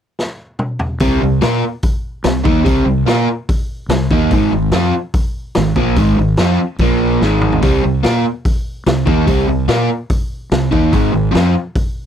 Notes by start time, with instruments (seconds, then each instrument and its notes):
0.19 snare
0.59 mid tom
0.79 floor tom
1.00 fingered electric bass C2, overdriven electric guitar C3 G3 C4, kick, open hi-hat
1.22 fingered electric bass C2, overdriven electric guitar C3 G3
1.41 fingered electric bass A#2, overdriven electric guitar A#3 F4 A#4, snare, open hi-hat
1.83 kick, open hi-hat
2.24 fingered electric bass C2, overdriven electric guitar C3 G3, snare, open hi-hat
2.45 fingered electric bass D#2, overdriven electric guitar D#3 A#3 D#4, kick
2.65 fingered electric bass C2, overdriven electric guitar C3 G3 C4, kick, open hi-hat
2.86 fingered electric bass C2, overdriven electric guitar C3 G3
3.05 fingered electric bass A#2, overdriven electric guitar A#3 F4 A#4, snare, open hi-hat
3.49 kick, open hi-hat
3.89 fingered electric bass C2, overdriven electric guitar C3 G3, snare, open hi-hat
4.11 fingered electric bass D#2, overdriven electric guitar D#3 A#3 D#4, kick
4.31 fingered electric bass G#1, overdriven electric guitar G#2 D#3 G#3, kick, open hi-hat
4.52 fingered electric bass G#1, overdriven electric guitar G#2 D#3
4.71 fingered electric bass F2, overdriven electric guitar F3 C4 F4, snare, open hi-hat
5.14 kick, open hi-hat
5.55 fingered electric bass G#1, overdriven electric guitar G#2 D#3, snare, open hi-hat
5.76 fingered electric bass A#1, overdriven electric guitar A#2 F3 A#3, kick
5.96 fingered electric bass G#1, overdriven electric guitar G#2 D#3 G#3, kick, open hi-hat
6.18 fingered electric bass G#1, overdriven electric guitar G#2 D#3
6.37 fingered electric bass F2, overdriven electric guitar F3 C4 F4, snare, open hi-hat
6.78 fingered electric bass A#1, overdriven electric guitar A#2 F3 A#3, kick, open hi-hat
7.21 fingered electric bass G#1, overdriven electric guitar G#2 D#3 G#3, snare
7.41 mid tom
7.52 floor tom
7.62 fingered electric bass C2, overdriven electric guitar C3 G3 C4, kick, open hi-hat
7.84 fingered electric bass C2, overdriven electric guitar C3 G3
8.03 fingered electric bass A#2, overdriven electric guitar A#3 F4 A#4, snare, open hi-hat
8.45 kick, open hi-hat
8.86 fingered electric bass C2, overdriven electric guitar C3 G3, snare, open hi-hat
9.05 fingered electric bass D#2, overdriven electric guitar D#3 A#3 D#4, kick
9.27 fingered electric bass C2, overdriven electric guitar C3 G3 C4, kick, open hi-hat
9.48 fingered electric bass C2, overdriven electric guitar C3 G3
9.68 fingered electric bass A#2, overdriven electric guitar A#3 F4 A#4, snare, open hi-hat
10.10 kick, open hi-hat
10.51 fingered electric bass C2, overdriven electric guitar C3 G3, snare, open hi-hat
10.71 fingered electric bass D#2, overdriven electric guitar D#3 A#3 D#4, kick
10.92 fingered electric bass G#1, overdriven electric guitar G#2 D#3 G#3, kick, open hi-hat
11.13 fingered electric bass G#1, overdriven electric guitar G#2 D#3
11.31 overdriven electric guitar F3 C4 F4, snare, open hi-hat
11.35 fingered electric bass F2
11.76 kick, open hi-hat